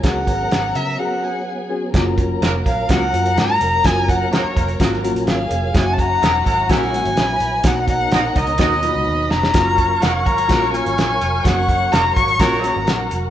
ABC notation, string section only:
X:1
M:4/4
L:1/8
Q:1/4=126
K:F#
V:1 name="String section"
[Aa]4- [Aa] [Gg]3 | [Aa]8- | [Aa]6 [Gg]2 | [Ff]6 [Bb]2 |
[Aa]4- [Aa] [Bb]3 | [cc']8- | [cc']4- [cc'] [Ff]3 |]